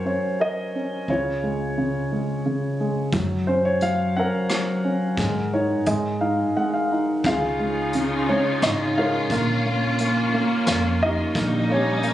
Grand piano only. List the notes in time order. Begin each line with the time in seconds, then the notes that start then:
Already playing: F#3 C#4 A#4 C5 C#5
0.05 C#4 C#5
0.40 A#4 D#5
0.75 C#4
1.09 C#3 F4 C#5
1.43 G#3
1.78 C#3
2.12 G#3
2.46 C#3
2.80 G#3
3.13 F#3
3.47 C#4 C5
3.65 C#5
3.82 F#3 F5
4.16 C#4 A#4 F#5
4.50 F#3
4.84 C#4
5.19 G#3
5.53 D#4 C#5
5.87 G#3 D#5
6.21 D#4 F5
6.57 G#3 F#5
6.74 F5
6.92 D#4
7.26 C#3 F4 G#4 F5
7.59 G#3
7.95 C#3
8.29 G#3 C#4 C#5
8.63 C#3 D#4 D#5
8.97 G#3 F4 A#4 C#5 F5
9.32 A#3
9.66 A#3
10.00 A#3
10.34 A#3
10.68 A#3
11.02 A#3 D#4 G4 D#5
11.35 A#3
11.69 A#3 C#5
11.74 C#4 G4
12.03 A#3